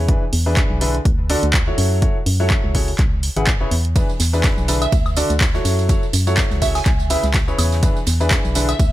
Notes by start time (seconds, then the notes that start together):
Already playing: E2
0.09 E3 D4 E4 G#4 B4, kick, closed hi-hat
0.33 E2, open hi-hat
0.46 E3 D4 E4 G#4 B4
0.57 kick, clap, closed hi-hat
0.70 B1
0.81 D3 D4 E4 G#4 B4, open hi-hat
0.95 closed hi-hat
1.05 D2, kick, closed hi-hat
1.30 D3 D4 F#4 A4 D5, open hi-hat
1.43 D2, closed hi-hat
1.54 kick, clap, closed hi-hat
1.67 F#3 E4 F#4 A4 C#5
1.78 F#2, open hi-hat
2.02 F#3 E4 F#4 A4 C#5, kick, closed hi-hat
2.26 F#2, open hi-hat
2.40 F#3 E4 F#4 A4 C#5
2.50 kick, clap, closed hi-hat
2.64 C#2
2.75 C#3 E4 F#4 A4 C#5, kick, open hi-hat
2.88 open hi-hat
2.99 C#2, kick, clap, closed hi-hat
3.23 open hi-hat
3.36 G#1 C#3 E4 G#4 B4 F#5, closed hi-hat
3.47 kick, clap, closed hi-hat
3.61 C#3 E4 G#4 B4 C#5
3.71 E2, open hi-hat
3.85 closed hi-hat
3.96 E3 D4 E4 G#4 B4, kick, closed hi-hat, ride, tambourine
4.09 tambourine
4.20 E2, snare, open hi-hat, ride, tambourine
4.33 E3 D4 E4 G#4 B4, tambourine
4.44 kick, snare, clap, closed hi-hat, ride, tambourine
4.57 B1, tambourine
4.68 D3 D4 E4 G#4 B4, open hi-hat, ride, tambourine
4.82 E5, closed hi-hat, tambourine, high woodblock
4.92 D2, kick, closed hi-hat, ride, tambourine
5.06 tambourine, high woodblock
5.16 D3 D4 F#4 A4 D5, open hi-hat, ride, tambourine
5.30 D2, closed hi-hat, tambourine
5.41 kick, snare, clap, closed hi-hat, ride, tambourine
5.54 F#3 E4 F#4 A4 C#5, snare, tambourine
5.65 F#2, open hi-hat, ride, tambourine
5.79 ride, tambourine
5.89 F#3 E4 F#4 A4 C#5, kick, closed hi-hat, ride, tambourine
6.03 tambourine
6.13 F#2, open hi-hat, ride, tambourine
6.27 F#3 E4 F#4 A4 C#5, ride, tambourine
6.37 kick, snare, clap, closed hi-hat, ride, tambourine
6.51 C#2, snare, tambourine
6.62 C#3 E4 F#4 A4 C#5 E5, kick, open hi-hat, ride, tambourine
6.75 G#5, snare, open hi-hat, tambourine, high woodblock
6.86 C#2, kick, clap, closed hi-hat, ride, tambourine
7.00 tambourine
7.10 C#3 E4 G#4 B4 E5, open hi-hat, ride, tambourine
7.24 C#2, snare, closed hi-hat, tambourine
7.34 kick, snare, clap, closed hi-hat, ride, tambourine
7.48 C#3 E4 G#4 B4 C#5, tambourine
7.59 E2, open hi-hat, ride, tambourine, high woodblock
7.72 snare, tambourine
7.83 E3 D4 E4 G#4 B4, kick, closed hi-hat, ride, tambourine
7.96 tambourine
8.06 E2, snare, open hi-hat, ride, tambourine
8.20 E3 D4 E4 G#4 B4, tambourine
8.31 kick, snare, clap, closed hi-hat, ride, tambourine
8.44 B1, tambourine
8.55 D3 D4 E4 G#4 B4, open hi-hat, ride, tambourine
8.69 E5, closed hi-hat, tambourine, high woodblock
8.79 D2, kick, closed hi-hat, ride, tambourine